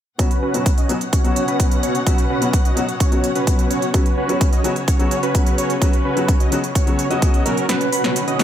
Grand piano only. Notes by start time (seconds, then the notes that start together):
0.18 B2 F#3 B3 C#4 F#4
0.54 B2 F#3 B3 C#4 F#4
0.89 B2 F#3 B3 C#4 F#4
1.24 B2 F#3 B3 C#4 F#4
1.59 B2 F#3 B3 C#4 F#4
2.06 B2 F#3 B3 C#4 F#4
2.41 B2 F#3 B3 C#4 F#4
2.76 B2 F#3 B3 C#4 F#4
3.11 B2 F#3 B3 C#4 F#4
3.47 B2 F#3 B3 C#4 F#4
3.93 C#3 F#3 B3 C#4 F#4
4.29 C#3 F#3 B3 C#4 F#4
4.64 C#3 F#3 B3 C#4 F#4
4.99 C#3 F#3 B3 C#4 F#4
5.34 C#3 F#3 B3 C#4 F#4
5.81 C#3 F#3 B3 C#4 F#4
6.16 C#3 F#3 B3 C#4 F#4
6.51 C#3 F#3 B3 C#4 F#4
6.86 C#3 F#3 B3 C#4 F#4
7.10 C#3 F#3 B3 C#4 F#4
7.45 B2 F#3 B3 C#4 F#4
7.68 B2 F#3 B3 C#4 F#4
8.04 B2 F#3 B3 C#4 F#4
8.39 B2 F#3 B3 C#4 F#4